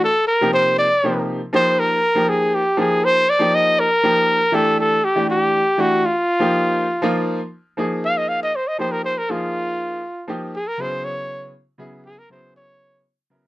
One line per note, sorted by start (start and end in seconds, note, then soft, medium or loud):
0.04 0.27 A4 loud
0.27 0.51 A#4 medium
0.41 0.85 C3 medium
0.41 0.85 F3 medium
0.41 0.85 A#3 medium
0.41 0.86 D#4 medium
0.41 0.86 G4 medium
0.54 0.77 C5 loud
0.79 1.23 D5 medium
1.03 1.39 C3 medium
1.03 1.39 F3 medium
1.03 1.39 A#3 medium
1.03 1.39 D#4 medium
1.03 1.39 G4 medium
1.53 1.97 F3 medium
1.53 1.97 A#3 medium
1.53 1.97 D#4 medium
1.53 1.98 G4 medium
1.53 1.81 C5 medium
1.79 2.31 A#4 medium
2.15 2.60 F3 medium
2.15 2.60 A#3 medium
2.15 2.60 D#4 medium
2.15 2.60 G4 medium
2.29 2.56 G#4 medium
2.55 2.79 G4 medium
2.77 3.22 F3 medium
2.77 3.22 A#3 medium
2.77 3.22 D#4 medium
2.77 3.23 G4 medium
2.77 3.06 G#4 medium
3.05 3.31 C5 loud
3.30 3.56 D5 medium
3.39 3.84 F3 medium
3.39 3.84 A#3 medium
3.39 3.85 D#4 medium
3.39 3.85 G4 medium
3.55 3.81 D#5 loud
3.79 4.56 A#4 loud
4.03 4.39 F3 medium
4.03 4.39 A#3 medium
4.03 4.39 D#4 medium
4.03 4.39 G4 medium
4.52 4.97 E3 medium
4.52 4.97 A3 medium
4.52 4.98 D4 medium
4.52 4.98 G4 medium
4.52 4.79 A4 loud
4.80 5.06 A4 medium
5.04 5.29 G4 medium
5.16 5.60 E3 medium
5.16 5.60 A3 medium
5.16 5.60 D4 medium
5.16 5.60 G4 medium
5.30 5.82 G4 medium
5.78 6.03 E3 medium
5.78 6.03 A3 medium
5.78 6.03 D4 medium
5.78 6.07 F#4 medium
5.78 6.04 G4 medium
6.05 7.29 F4 medium
6.40 6.84 F3 medium
6.40 6.85 A#3 medium
6.40 6.85 D#4 medium
6.40 6.85 G4 medium
7.02 7.38 F3 medium
7.02 7.38 A#3 medium
7.02 7.38 D#4 medium
7.02 7.39 F4 medium
7.77 8.48 F3 medium
7.77 8.49 A#3 medium
7.77 8.49 D#4 medium
7.77 8.49 G#4 medium
8.05 8.19 F5 medium
8.18 8.30 D#5 medium
8.29 8.40 F5 medium
8.43 8.57 D#5 medium
8.56 8.69 C5 medium
8.68 8.78 D#5 medium
8.78 9.14 F3 medium
8.78 9.14 A#3 medium
8.78 9.14 D#4 medium
8.78 9.15 G4 medium
8.78 8.93 C5 medium
8.92 9.03 A#4 medium
9.05 9.19 C5 medium
9.18 9.32 A#4 medium
9.29 10.00 F3 medium
9.29 10.00 A#3 medium
9.29 10.00 D#4 medium
9.29 10.27 F4 medium
9.29 10.00 G#4 medium
10.28 10.53 F3 medium
10.28 10.53 A#3 medium
10.28 10.54 D#4 medium
10.28 10.54 G4 medium
10.55 10.69 G#4 medium
10.68 10.83 A#4 medium
10.78 11.49 C#3 medium
10.78 11.49 F#3 medium
10.78 11.50 B3 soft
10.78 11.50 E4 soft
10.78 11.50 G#4 medium
10.78 11.06 C5 medium
11.04 11.53 C#5 medium
11.78 12.14 C#3 medium
11.78 12.14 F#3 medium
11.78 12.14 B3 medium
11.78 12.15 E4 medium
11.78 12.15 G#4 medium
12.05 12.20 G#4 medium
12.19 12.29 A#4 medium
12.30 13.00 C#3 soft
12.30 13.01 F#3 medium
12.30 13.01 B3 soft
12.30 13.01 E4 soft
12.30 13.01 G#4 medium
12.30 12.54 C5 medium
12.56 13.04 C#5 medium
13.30 13.47 C#3 medium
13.30 13.47 F#3 medium
13.30 13.47 B3 medium
13.30 13.47 E4 medium
13.30 13.47 A#4 medium